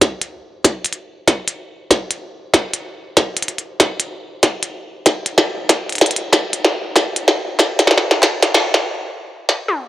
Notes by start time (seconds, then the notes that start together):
0.01 kick, snare, closed hi-hat
0.21 closed hi-hat
0.64 kick, snare, closed hi-hat
0.84 closed hi-hat
0.93 closed hi-hat
1.28 kick, snare, closed hi-hat
1.48 closed hi-hat
1.91 kick, snare, closed hi-hat
2.11 closed hi-hat
2.54 kick, snare, closed hi-hat
2.74 closed hi-hat
3.17 kick, snare, closed hi-hat
3.37 closed hi-hat
3.43 closed hi-hat
3.48 closed hi-hat
3.58 closed hi-hat
3.80 kick, snare, closed hi-hat
4.00 closed hi-hat
4.43 kick, snare, closed hi-hat
4.63 closed hi-hat
5.06 kick, snare, closed hi-hat
5.26 closed hi-hat
5.38 snare
5.69 kick, snare, closed hi-hat
5.89 closed hi-hat
5.92 closed hi-hat
5.95 closed hi-hat
5.98 snare, closed hi-hat
6.01 closed hi-hat
6.06 closed hi-hat
6.11 closed hi-hat
6.16 closed hi-hat
6.33 kick, snare, closed hi-hat
6.53 closed hi-hat
6.65 snare
6.96 kick, snare, closed hi-hat
7.16 closed hi-hat
7.28 snare
7.59 kick, snare, closed hi-hat
7.79 snare, closed hi-hat
7.87 snare
7.91 snare
7.98 snare
8.11 snare
8.22 kick, snare, closed hi-hat
8.43 snare, closed hi-hat
8.54 snare
8.74 snare
9.49 snare
9.68 high tom